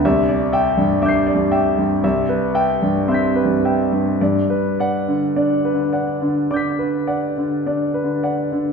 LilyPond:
<<
  \new Staff \with { instrumentName = "Grand piano" } { \time 4/4 \key c \lydian \tempo 4 = 53 << { r8 g''16 r16 <d''' g''' c''''>4 r8 g''16 r16 <c''' g''' b'''>4 | r8 fis''16 r4 r16 <d''' g''' b'''>2 | } \\ { e''16 d''16 e''16 g,16 e''16 d''16 <e'' g''>16 g,16 e''16 b'16 e''16 g,16 e''16 b'16 <e'' g''>16 g,16 | d''16 b'16 d''16 d16 d''16 b'16 <d'' fis''>16 d16 d''16 b'16 <d'' fis''>16 d16 d''16 b'16 <d'' fis''>16 d16 | } >> }
  \new Staff \with { instrumentName = "Grand piano" } { \clef bass \time 4/4 \key c \lydian c,4 \tuplet 3/2 { d'8 g,4 } c,4 \tuplet 3/2 { c'8 g,4 } | g,4 \tuplet 3/2 { d'8 d4 } d8 r8 \tuplet 3/2 { d'8 d4 } | }
>>